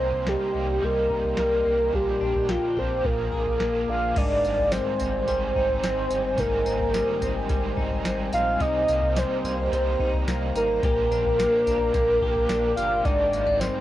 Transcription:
Already playing: overdriven electric guitar C3 G3 A#3 D#4, clean electric guitar C3 G3 D#4, ambient pad A#4 D#5 G5 C6, soft synth lead C5
0.00 sub bass C2, clean electric guitar A#3
0.13 floor tom
0.27 clean electric guitar D#4, soft synth lead G4, snare
0.54 sub bass C2, overdriven electric guitar G3 A#3 D#4, clean electric guitar A#3, floor tom
0.81 sub bass C2, overdriven electric guitar C3 G3 A#3 D#4, clean electric guitar G3, soft synth lead A#4, floor tom
1.10 sub bass C2, clean electric guitar D#4, kick
1.23 floor tom
1.36 sub bass C2, overdriven electric guitar C3 G3 A#3 D#4, clean electric guitar G3, soft synth lead A#4, snare
1.65 sub bass C2, clean electric guitar A#3
1.93 sub bass A#1, overdriven electric guitar A#2 D3 F3 A#3 D4 G4, clean electric guitar A#2, soft synth lead G4, ambient pad F5 D6, kick, floor tom
2.21 sub bass A#1, clean electric guitar D4
2.34 floor tom
2.49 soft synth lead F4, clean electric guitar G4, snare
2.75 sub bass A#1, overdriven electric guitar F3 A#3 D4 G4, clean electric guitar D4, soft synth lead C5, floor tom
3.04 sub bass A#1, clean electric guitar A#2, overdriven electric guitar F3 A#3 D4 G#4, soft synth lead A#4, ambient pad G#5, kick, floor tom
3.32 sub bass A#1, clean electric guitar G#4, kick
3.46 floor tom
3.59 sub bass A#1, overdriven electric guitar F3 A#3 D4 G#4, clean electric guitar A#3, snare
3.88 sub bass A#1, clean electric guitar D4, soft synth lead F5
4.14 sub bass G#1, overdriven electric guitar G#2 D#3 G3 C4, clean electric guitar G#2 D#4, ambient pad C5 G5 G#5, soft synth lead D5, kick, floor tom, crash, tambourine
4.19 overdriven electric guitar D#4
4.44 sub bass G#1, clean electric guitar C4, tambourine
4.57 floor tom
4.71 clean electric guitar G3, soft synth lead C5, snare, tambourine
4.99 sub bass G#1, clean electric guitar C4, floor tom, tambourine
5.26 sub bass G#1, overdriven electric guitar G#2 D#3 G3 C4 D#4, clean electric guitar G3, soft synth lead C5, floor tom, tambourine
5.54 sub bass G#1, overdriven electric guitar G3 C4 D#4, clean electric guitar D#4, kick
5.69 floor tom
5.83 sub bass G#1, clean electric guitar C4, snare, tambourine
6.10 sub bass G1, clean electric guitar D#4, tambourine
6.36 sub bass G#1, overdriven electric guitar G#2 D#3 G3 C4 D#4, clean electric guitar G#2 D#4, soft synth lead A#4, kick, floor tom, tambourine
6.66 sub bass G#1, clean electric guitar C4, tambourine
6.79 floor tom
6.92 overdriven electric guitar D#3 G3 C4 D#4, clean electric guitar G3, snare, tambourine
7.21 sub bass G#1, clean electric guitar C4, floor tom, tambourine
7.48 sub bass G#1, overdriven electric guitar G#2 D#3 G3 C4 D#4, clean electric guitar G3, kick, floor tom, tambourine
7.75 sub bass G#1, overdriven electric guitar G3 C4 D#4, clean electric guitar D#4, kick
7.91 floor tom
8.05 sub bass G#1, clean electric guitar C4, snare, tambourine
8.32 sub bass A#1, clean electric guitar D#4, soft synth lead F5, tambourine
8.58 sub bass C2, overdriven electric guitar C3 G3 A#3 D#4, clean electric guitar C3 D#4, soft synth lead D#5, ambient pad G5 A#5, kick, floor tom, tambourine
8.88 sub bass C2, clean electric guitar A#3, tambourine
9.02 floor tom
9.15 overdriven electric guitar C3 G3 A#3 D#4, clean electric guitar G3, soft synth lead C5, snare, tambourine
9.43 sub bass C2, clean electric guitar A#3, floor tom, tambourine
9.70 sub bass C2, overdriven electric guitar C3 G3 A#3, clean electric guitar G3, floor tom, tambourine
9.74 overdriven electric guitar D#4, soft synth lead C5
9.99 sub bass C2, clean electric guitar D#4, kick
10.14 floor tom
10.27 sub bass C2, clean electric guitar A#3, snare, tambourine
10.54 sub bass G#1, clean electric guitar D#4, soft synth lead A#4, tambourine
10.82 sub bass A#1, overdriven electric guitar A#2 D3 F3 A#3 D4 G4, clean electric guitar A#2 G4, ambient pad A#4 F5 D6, soft synth lead A#4, kick, floor tom, tambourine
11.10 sub bass A#1, clean electric guitar D4, tambourine
11.25 floor tom
11.38 overdriven electric guitar F3 A#3 D4 G4, clean electric guitar A#3, snare, tambourine
11.66 sub bass A#1, clean electric guitar D4, floor tom, tambourine
11.93 sub bass A#1, overdriven electric guitar A#2 D3 F3 A#3 D4 G4, clean electric guitar A#3, kick, floor tom, tambourine
12.21 sub bass A#1, overdriven electric guitar F3 A#3 D4 G4, clean electric guitar G4, kick
12.35 floor tom
12.49 sub bass A#1, clean electric guitar D4, snare, tambourine
12.76 sub bass G1, clean electric guitar G4, soft synth lead F5, tambourine
13.03 sub bass G#1, overdriven electric guitar G#2 D#3 G3 C4, clean electric guitar G#2 D#4, ambient pad C5 G#5, soft synth lead D5, kick, floor tom, tambourine
13.08 overdriven electric guitar D#4
13.32 sub bass G#1, clean electric guitar A#3, tambourine
13.46 clean electric guitar C4, floor tom
13.60 clean electric guitar G3, soft synth lead C5, snare, tambourine

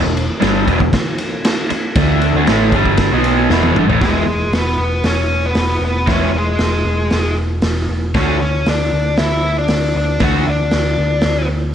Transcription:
0.04 picked electric bass E1, overdriven electric guitar E2 B2
0.17 ride
0.41 picked electric bass G1, overdriven electric guitar G2 D3 G3, snare, ride
0.67 picked electric bass E1, overdriven electric guitar E2 B2, kick, ride
0.80 picked electric bass E1, overdriven electric guitar E2 B2, kick
0.93 muted picked electric bass stroke, muted overdriven electric guitar stroke, kick, snare, ride
1.18 ride
1.45 snare, ride
1.70 muted overdriven electric guitar stroke, muted picked electric bass stroke, ride
1.95 picked electric bass D2, overdriven electric guitar D3 A3 D4, kick, snare, ride
2.21 ride
2.34 picked electric bass D2, overdriven electric guitar D3 A3
2.47 picked electric bass A1, overdriven electric guitar A2 E3 A3, snare, ride
2.72 picked electric bass G1, overdriven electric guitar G2 D3 G3, kick, ride
2.85 kick
2.97 kick, snare, ride
3.12 picked electric bass B1, overdriven electric guitar B2 F#3 B3
3.24 ride
3.49 picked electric bass E1, overdriven electric guitar E2 B2 E3, snare
3.63 high tom
3.75 picked electric bass G1, overdriven electric guitar G2 D3, mid tom
3.88 picked electric bass A1, overdriven electric guitar A2 E3, floor tom
4.01 picked electric bass E1, overdriven electric guitar E3 G#3 B3 E4, lead electric guitar G#3, kick, snare, open hi-hat
4.26 picked electric bass E1
4.52 picked electric bass E1, lead electric guitar B3, snare, open hi-hat
4.78 picked electric bass E1
5.03 picked electric bass E1, lead electric guitar C#4, snare, open hi-hat
5.46 lead electric guitar B3
5.55 picked electric bass E1, snare, open hi-hat
5.80 picked electric bass E1
5.85 lead electric guitar B3
6.07 picked electric bass E1, overdriven electric guitar E3 G#3 B3 E4, kick, snare, open hi-hat
6.12 lead electric guitar C#4
6.33 picked electric bass E1, lead electric guitar G#3
6.58 picked electric bass E1, snare, open hi-hat
6.85 picked electric bass E1
7.10 picked electric bass E1, snare, open hi-hat
7.62 picked electric bass E1, snare, open hi-hat
7.89 picked electric bass E1
8.14 picked electric bass D2, overdriven electric guitar D3 A3 D4 F#4, lead electric guitar C#4, kick, snare, open hi-hat
8.41 picked electric bass D2, lead electric guitar C#4
8.66 picked electric bass D2, lead electric guitar D4, snare, open hi-hat
8.92 picked electric bass D2
9.17 picked electric bass D2, lead electric guitar E4, snare, open hi-hat
9.58 lead electric guitar D4
9.68 picked electric bass D2, snare, open hi-hat
9.95 picked electric bass D2, lead electric guitar D4
10.20 picked electric bass D2, overdriven electric guitar D3 A3 D4, lead electric guitar F#4, kick, snare, open hi-hat
10.24 overdriven electric guitar F#4
10.47 picked electric bass D2, lead electric guitar D4
10.71 picked electric bass D2, snare, open hi-hat
10.98 picked electric bass D2
11.21 picked electric bass D2, snare, open hi-hat

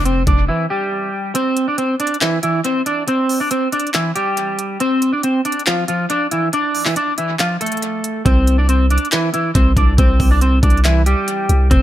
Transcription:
Already playing: 808-style bass F1
0.05 clean electric guitar C4 C5, closed hi-hat
0.27 808-style bass F1, clean electric guitar D4 D5, kick, closed hi-hat
0.48 clean electric guitar E3 E4
0.70 clean electric guitar G3 G4
1.35 clean electric guitar C4 C5, closed hi-hat
1.57 closed hi-hat
1.68 clean electric guitar D4 D5
1.78 clean electric guitar C4 C5, closed hi-hat
2.00 clean electric guitar D4 D5, closed hi-hat
2.07 closed hi-hat
2.14 closed hi-hat
2.21 clean electric guitar E3 E4, clap, closed hi-hat
2.43 clean electric guitar E3 E4, closed hi-hat
2.65 clean electric guitar C4 C5, closed hi-hat
2.86 clean electric guitar D4 D5, closed hi-hat
3.08 clean electric guitar C4 C5, closed hi-hat
3.29 open hi-hat
3.40 clean electric guitar D4 D5
3.51 clean electric guitar C4 C5, closed hi-hat
3.72 clean electric guitar D4 D5, closed hi-hat
3.80 closed hi-hat
3.87 closed hi-hat
3.94 clean electric guitar E3 E4, clap, closed hi-hat
4.15 clean electric guitar G3 G4, closed hi-hat
4.37 closed hi-hat
4.59 closed hi-hat
4.80 clean electric guitar C4 C5, closed hi-hat
5.02 closed hi-hat
5.13 clean electric guitar D4 D5
5.23 clean electric guitar C4 C5, closed hi-hat
5.45 clean electric guitar D4 D5, closed hi-hat
5.52 closed hi-hat
5.59 closed hi-hat
5.67 clean electric guitar F3 F4, clap, closed hi-hat
5.88 clean electric guitar F3 F4, closed hi-hat
6.10 clean electric guitar D4 D5, closed hi-hat
6.31 clean electric guitar E3 E4, closed hi-hat
6.53 clean electric guitar D4 D5, closed hi-hat
6.75 open hi-hat
6.85 clean electric guitar E3 E4, clap
6.96 clean electric guitar D4 D5, closed hi-hat
7.18 clean electric guitar E3 E4, closed hi-hat
7.39 clean electric guitar F3 F4, clap, closed hi-hat
7.61 clean electric guitar A3 A4, closed hi-hat
7.66 closed hi-hat
7.72 closed hi-hat
7.77 closed hi-hat
7.82 closed hi-hat
8.04 closed hi-hat
8.26 808-style bass C2, clean electric guitar C4 C5, kick, closed hi-hat
8.47 closed hi-hat
8.58 clean electric guitar D4 D5
8.69 clean electric guitar C4 C5, closed hi-hat
8.90 clean electric guitar D4 D5, closed hi-hat
8.98 closed hi-hat
9.05 closed hi-hat
9.12 clean electric guitar E3 E4, clap, closed hi-hat
9.34 clean electric guitar E3 E4, closed hi-hat
9.55 808-style bass C2, clean electric guitar C4 C5, kick, closed hi-hat
9.77 808-style bass C2, clean electric guitar D4 D5, kick, closed hi-hat
9.98 808-style bass C2, clean electric guitar C4 C5, kick, closed hi-hat
10.20 808-style bass C2, kick, open hi-hat
10.31 clean electric guitar D4 D5
10.41 clean electric guitar C4 C5, closed hi-hat
10.63 808-style bass C2, clean electric guitar D4 D5, kick, closed hi-hat
10.70 closed hi-hat
10.77 closed hi-hat
10.85 clean electric guitar E3 E4, clap, closed hi-hat
11.06 clean electric guitar G3 G4, closed hi-hat
11.28 closed hi-hat
11.49 808-style bass C2, closed hi-hat
11.71 808-style bass F1, clean electric guitar C4 C5, kick, closed hi-hat

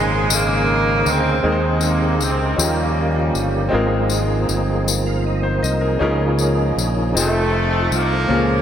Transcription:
Already playing: fingered electric bass G#1, grand piano A#2 C#3 C4 D#4 G#4 A#4, tonewheel organ C#3 A#3 D#4 G#4 C5, horn section G#3
0.30 horn section C#3 A#3 D#4, tambourine
1.06 fingered electric bass D2, horn section C4, tambourine
1.43 fingered electric bass D#2, grand piano D#3 G#3 C4 D#4 G#4 A#4, tonewheel organ C4 D#4 G#4
1.47 horn section C3 D#3 G#3
1.52 grand piano C5
1.81 tambourine
1.85 horn section A#3
2.20 fingered electric bass C#2, horn section C4, tambourine
2.56 fingered electric bass D#2, grand piano D#3 C#4 D#4 F4 G4 G#4, tonewheel organ F3 A#3 C#4 D#4 G4, tambourine
2.61 horn section C#3 G3 A#3
2.65 grand piano A#4
3.34 fingered electric bass G1, tambourine
3.69 grand piano G#3 C4 D#4 F4
3.73 fingered electric bass G#1, tonewheel organ F3 A#3 B3 D#4 G#4, grand piano G#4 A#4
3.80 tonewheel organ C4
4.10 tambourine
4.49 fingered electric bass G1, tambourine
4.88 tambourine
5.06 tonewheel organ F5
5.26 tonewheel organ D#5
5.43 grand piano C5, tonewheel organ C5
5.63 fingered electric bass C2, tonewheel organ A#4, grand piano D#5, tambourine
5.81 tonewheel organ G#4, grand piano A#4
5.99 fingered electric bass C#2, grand piano C#3 C#4 D#4 F4 G#4 A#4, tonewheel organ E3 A#3 C#4 D#4 G#4
6.09 tonewheel organ F3
6.39 tambourine
6.77 fingered electric bass A#1, tambourine
7.14 fingered electric bass F1, horn section C3 D#3 A3, tonewheel organ F3 C4 D#4 A4, grand piano C4 D#4 F4 G#4 C5, tambourine
7.24 grand piano A4
7.91 fingered electric bass C2, horn section F3 A#3, tambourine
8.27 fingered electric bass C#2, grand piano A#2 A#3 C#4 F4
8.32 tonewheel organ F3 G#3 A#3 C#4 G#4, grand piano G#4 A#4

